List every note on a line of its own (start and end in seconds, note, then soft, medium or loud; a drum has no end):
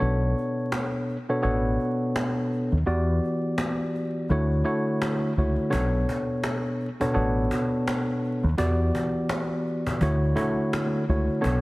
0.00 0.33 B1 loud
0.00 1.16 B2 medium
0.00 1.16 B3 medium
0.00 1.16 D4 medium
0.00 1.16 A4 medium
0.00 1.16 C#5 loud
0.00 cajon slap soft
0.38 cajon slap soft
0.72 cajon slap loud
1.09 cajon slap soft
1.29 1.41 B2 medium
1.29 1.41 B3 medium
1.29 1.42 D4 medium
1.29 1.42 A4 medium
1.29 1.42 C#5 loud
1.42 1.76 A1 loud
1.42 2.76 B2 medium
1.42 2.77 B3 medium
1.42 2.77 D4 medium
1.42 2.77 A4 medium
1.42 2.77 C#5 medium
1.42 cajon slap soft
1.80 cajon slap soft
2.16 cajon slap loud
2.52 cajon slap soft
2.71 2.85 D#2 medium
2.71 cajon slap soft
2.86 3.18 E2 loud
2.86 4.29 E3 medium
2.86 4.29 B3 medium
2.86 4.29 F#4 medium
2.86 4.30 G4 medium
2.86 4.30 D5 loud
2.86 cajon slap soft
3.24 cajon slap soft
3.58 cajon slap loud
3.95 cajon slap soft
4.29 4.61 D2 loud
4.29 4.63 D3 medium
4.29 4.63 A3 medium
4.29 4.64 E4 medium
4.29 4.64 F#4 medium
4.29 4.64 C#5 loud
4.29 cajon slap soft
4.51 cajon slap soft
4.64 5.32 D3 medium
4.64 5.32 A3 medium
4.64 5.32 E4 medium
4.64 5.32 F#4 medium
4.64 5.32 C#5 loud
4.64 cajon slap soft
5.02 cajon slap loud
5.37 5.55 C#2 medium
5.37 5.71 D3 medium
5.37 5.71 A3 medium
5.37 5.71 E4 medium
5.37 5.71 F#4 medium
5.37 5.70 C#5 medium
5.37 cajon slap soft
5.57 cajon slap soft
5.70 6.04 B1 loud
5.70 6.87 B2 medium
5.70 6.88 B3 medium
5.70 6.88 D4 medium
5.70 6.88 A4 medium
5.70 6.88 C#5 loud
5.70 cajon bass loud
6.09 cajon bass medium
6.44 cajon slap loud
6.81 cajon slap soft
7.00 7.12 B2 medium
7.00 7.13 B3 medium
7.00 7.13 D4 medium
7.00 7.13 A4 medium
7.00 7.13 C#5 loud
7.00 cajon bass medium
7.14 7.47 A1 loud
7.14 8.48 B2 medium
7.14 8.48 B3 medium
7.14 8.48 D4 medium
7.14 8.48 A4 medium
7.14 8.48 C#5 loud
7.14 cajon slap soft
7.51 cajon bass medium
7.88 cajon slap loud
8.24 cajon slap soft
8.43 8.57 D#2 medium
8.43 cajon slap soft
8.57 8.90 E2 loud
8.57 10.01 E3 medium
8.57 10.01 B3 medium
8.57 10.01 F#4 medium
8.57 10.01 G4 medium
8.57 10.01 D5 loud
8.57 cajon bass loud
8.95 cajon bass medium
9.29 cajon slap loud
9.67 cajon slap soft
9.87 cajon bass medium
10.01 10.33 D2 loud
10.01 10.34 D3 loud
10.01 10.35 A3 medium
10.01 10.35 E4 medium
10.01 10.35 F#4 medium
10.01 10.35 C#5 loud
10.01 cajon bass medium
10.23 cajon slap soft
10.35 11.03 D3 medium
10.35 11.03 A3 medium
10.35 11.03 E4 medium
10.35 11.03 F#4 medium
10.35 11.03 C#5 loud
10.35 cajon bass medium
10.73 cajon slap loud
11.09 11.27 C#2 medium
11.09 11.42 D3 medium
11.09 11.42 A3 medium
11.09 11.42 E4 medium
11.09 11.42 F#4 medium
11.09 11.41 C#5 medium
11.09 cajon slap soft
11.28 cajon slap soft
11.41 11.61 B1 loud
11.41 11.61 B2 medium
11.41 11.61 B3 medium
11.41 11.61 D4 medium
11.41 11.61 A4 medium
11.41 11.61 C#5 loud
11.41 cajon bass loud